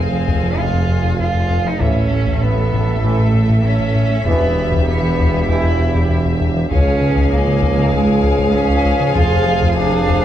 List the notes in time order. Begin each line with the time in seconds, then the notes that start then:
Already playing: F1 F2 C4 G#4 F5 G#5
0.13 F3
0.28 F2, taiko
0.43 F3
0.58 F2 C3 G#3 F4 G#4 F5
0.74 F2
0.89 F2
1.04 F2
1.19 F2 F4
1.34 F2
1.50 F2
1.65 F3 D#4
1.80 A1 A2 E3 C#4 A4 E5, taiko
1.96 A2
2.11 A3
2.26 A2, taiko
2.42 A2 B3
2.57 A3
2.72 A2, taiko
2.88 A3
3.03 A2 E3 A3 A4 E5
3.19 A2
3.34 A2
3.50 A2
3.64 A2 C#4
3.80 A2
3.95 A2
4.11 A3
4.25 E1 E2 B2 E3 B3 G4 E5, taiko
4.41 E2
4.57 E3
4.72 E2, taiko
4.87 E2 B3
5.02 E3
5.18 E2, taiko
5.34 E3
5.48 E2 B2 E3 E4 G4 E5
5.64 E2
5.79 E2
5.95 E2
6.10 E2
6.26 E2
6.41 E2
6.56 E3
6.71 C#2 G#2 F3 C#4 G#4 C#5 F5 G#5, taiko
6.87 C#2
7.02 C#3
7.17 C#2, taiko
7.33 C#2 A#3
7.47 C#3
7.62 C#2, taiko
7.78 C#3
7.92 C#2 G#3
8.08 C#2
8.23 C#2
8.39 C#2
8.54 C#2 C#4
8.70 C#2
8.85 C#2
9.00 C#3
9.15 F1 F2 C3 F4 C5, taiko
9.31 F2
9.47 F3
9.61 F2, taiko
9.77 F2 D4
9.92 F3
10.07 F2, taiko